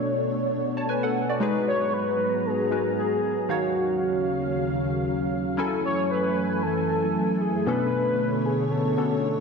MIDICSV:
0, 0, Header, 1, 4, 480
1, 0, Start_track
1, 0, Tempo, 521739
1, 1292, Time_signature, 4, 2, 24, 8
1, 8650, End_track
2, 0, Start_track
2, 0, Title_t, "Soft synth lead"
2, 0, Program_c, 0, 80
2, 0, Note_on_c, 0, 73, 103
2, 189, Note_off_c, 0, 73, 0
2, 1541, Note_on_c, 0, 73, 104
2, 1780, Note_on_c, 0, 71, 100
2, 1794, Note_off_c, 0, 73, 0
2, 2258, Note_on_c, 0, 68, 100
2, 2272, Note_off_c, 0, 71, 0
2, 2733, Note_off_c, 0, 68, 0
2, 2738, Note_on_c, 0, 68, 98
2, 3219, Note_on_c, 0, 66, 83
2, 3233, Note_off_c, 0, 68, 0
2, 4175, Note_off_c, 0, 66, 0
2, 5379, Note_on_c, 0, 73, 110
2, 5599, Note_off_c, 0, 73, 0
2, 5619, Note_on_c, 0, 71, 101
2, 6098, Note_on_c, 0, 69, 104
2, 6111, Note_off_c, 0, 71, 0
2, 6817, Note_on_c, 0, 68, 90
2, 6831, Note_off_c, 0, 69, 0
2, 7052, Note_off_c, 0, 68, 0
2, 7057, Note_on_c, 0, 71, 110
2, 7778, Note_on_c, 0, 68, 87
2, 7792, Note_off_c, 0, 71, 0
2, 8017, Note_on_c, 0, 69, 85
2, 8031, Note_off_c, 0, 68, 0
2, 8650, Note_off_c, 0, 69, 0
2, 8650, End_track
3, 0, Start_track
3, 0, Title_t, "Synth keys"
3, 0, Program_c, 1, 88
3, 0, Control_c, 1, 64, 127
3, 0, Note_on_c, 1, 47, 65
3, 0, Note_on_c, 1, 59, 61
3, 0, Note_on_c, 1, 62, 58
3, 0, Note_on_c, 1, 69, 56
3, 0, Note_on_c, 1, 73, 72
3, 554, Note_off_c, 1, 69, 0
3, 586, Note_off_c, 1, 73, 0
3, 708, Note_on_c, 1, 81, 61
3, 714, Note_on_c, 1, 73, 52
3, 809, Note_off_c, 1, 81, 0
3, 812, Note_off_c, 1, 73, 0
3, 818, Note_on_c, 1, 80, 72
3, 823, Note_on_c, 1, 71, 58
3, 940, Note_off_c, 1, 80, 0
3, 943, Note_off_c, 1, 71, 0
3, 949, Note_on_c, 1, 78, 66
3, 955, Note_on_c, 1, 69, 59
3, 1174, Note_off_c, 1, 78, 0
3, 1177, Note_off_c, 1, 69, 0
3, 1191, Note_on_c, 1, 74, 63
3, 1196, Note_on_c, 1, 66, 53
3, 1252, Note_off_c, 1, 47, 0
3, 1255, Note_off_c, 1, 59, 0
3, 1258, Note_off_c, 1, 62, 0
3, 1287, Note_on_c, 1, 56, 76
3, 1288, Note_off_c, 1, 66, 0
3, 1293, Note_on_c, 1, 63, 70
3, 1299, Note_on_c, 1, 66, 68
3, 1302, Control_c, 1, 64, 0
3, 1304, Note_on_c, 1, 68, 66
3, 1311, Note_on_c, 1, 71, 80
3, 1415, Note_off_c, 1, 74, 0
3, 1483, Control_c, 1, 64, 127
3, 2465, Note_off_c, 1, 56, 0
3, 2468, Note_off_c, 1, 63, 0
3, 2471, Note_off_c, 1, 66, 0
3, 2474, Note_off_c, 1, 68, 0
3, 2477, Note_off_c, 1, 71, 0
3, 2492, Note_on_c, 1, 56, 48
3, 2494, Note_on_c, 1, 63, 45
3, 2498, Note_on_c, 1, 66, 48
3, 2500, Note_on_c, 1, 70, 44
3, 2503, Note_on_c, 1, 71, 55
3, 3202, Note_off_c, 1, 63, 0
3, 3208, Note_on_c, 1, 51, 64
3, 3212, Note_off_c, 1, 56, 0
3, 3213, Note_on_c, 1, 63, 58
3, 3214, Note_off_c, 1, 66, 0
3, 3216, Note_off_c, 1, 70, 0
3, 3217, Note_off_c, 1, 71, 0
3, 3218, Note_on_c, 1, 77, 60
3, 3224, Control_c, 1, 64, 0
3, 3225, Note_on_c, 1, 66, 56
3, 3230, Note_on_c, 1, 73, 71
3, 3396, Control_c, 1, 64, 127
3, 5093, Note_off_c, 1, 51, 0
3, 5095, Note_off_c, 1, 63, 0
3, 5098, Note_off_c, 1, 77, 0
3, 5101, Note_off_c, 1, 66, 0
3, 5104, Note_off_c, 1, 73, 0
3, 5126, Note_on_c, 1, 54, 75
3, 5132, Note_on_c, 1, 61, 73
3, 5138, Note_on_c, 1, 64, 70
3, 5142, Control_c, 1, 64, 0
3, 5144, Note_on_c, 1, 80, 70
3, 5149, Note_on_c, 1, 69, 87
3, 5275, Control_c, 1, 64, 127
3, 7012, Note_off_c, 1, 54, 0
3, 7015, Note_off_c, 1, 61, 0
3, 7018, Note_off_c, 1, 64, 0
3, 7021, Note_off_c, 1, 80, 0
3, 7023, Note_off_c, 1, 69, 0
3, 7046, Note_on_c, 1, 47, 64
3, 7052, Note_on_c, 1, 59, 60
3, 7057, Note_on_c, 1, 61, 61
3, 7062, Note_on_c, 1, 62, 61
3, 7063, Control_c, 1, 64, 0
3, 7069, Note_on_c, 1, 69, 71
3, 7209, Control_c, 1, 64, 127
3, 8224, Note_off_c, 1, 47, 0
3, 8227, Note_off_c, 1, 59, 0
3, 8230, Note_off_c, 1, 61, 0
3, 8233, Note_off_c, 1, 62, 0
3, 8236, Note_off_c, 1, 69, 0
3, 8252, Note_on_c, 1, 47, 50
3, 8255, Note_on_c, 1, 59, 47
3, 8258, Note_on_c, 1, 61, 46
3, 8260, Note_on_c, 1, 62, 46
3, 8263, Note_on_c, 1, 69, 57
3, 8650, Note_off_c, 1, 47, 0
3, 8650, Note_off_c, 1, 59, 0
3, 8650, Note_off_c, 1, 61, 0
3, 8650, Note_off_c, 1, 62, 0
3, 8650, Note_off_c, 1, 69, 0
3, 8650, End_track
4, 0, Start_track
4, 0, Title_t, "String machine"
4, 0, Program_c, 2, 50
4, 0, Note_on_c, 2, 47, 77
4, 0, Note_on_c, 2, 57, 72
4, 0, Note_on_c, 2, 62, 72
4, 0, Note_on_c, 2, 73, 87
4, 1255, Note_off_c, 2, 57, 0
4, 1272, Note_off_c, 2, 47, 0
4, 1272, Note_off_c, 2, 62, 0
4, 1272, Note_off_c, 2, 73, 0
4, 1291, Note_on_c, 2, 44, 75
4, 1291, Note_on_c, 2, 54, 72
4, 1291, Note_on_c, 2, 59, 73
4, 1291, Note_on_c, 2, 82, 85
4, 3192, Note_off_c, 2, 44, 0
4, 3192, Note_off_c, 2, 54, 0
4, 3192, Note_off_c, 2, 59, 0
4, 3192, Note_off_c, 2, 82, 0
4, 3212, Note_on_c, 2, 39, 80
4, 3212, Note_on_c, 2, 54, 72
4, 3212, Note_on_c, 2, 77, 86
4, 3213, Note_on_c, 2, 49, 71
4, 5112, Note_off_c, 2, 54, 0
4, 5112, Note_off_c, 2, 77, 0
4, 5113, Note_off_c, 2, 39, 0
4, 5113, Note_off_c, 2, 49, 0
4, 5130, Note_on_c, 2, 42, 76
4, 5130, Note_on_c, 2, 52, 71
4, 5130, Note_on_c, 2, 57, 68
4, 5130, Note_on_c, 2, 80, 85
4, 7031, Note_off_c, 2, 42, 0
4, 7031, Note_off_c, 2, 52, 0
4, 7032, Note_off_c, 2, 80, 0
4, 7051, Note_on_c, 2, 47, 79
4, 7051, Note_on_c, 2, 50, 73
4, 7051, Note_on_c, 2, 73, 84
4, 8650, Note_off_c, 2, 47, 0
4, 8650, Note_off_c, 2, 50, 0
4, 8650, Note_off_c, 2, 57, 0
4, 8650, Note_off_c, 2, 73, 0
4, 8650, End_track
0, 0, End_of_file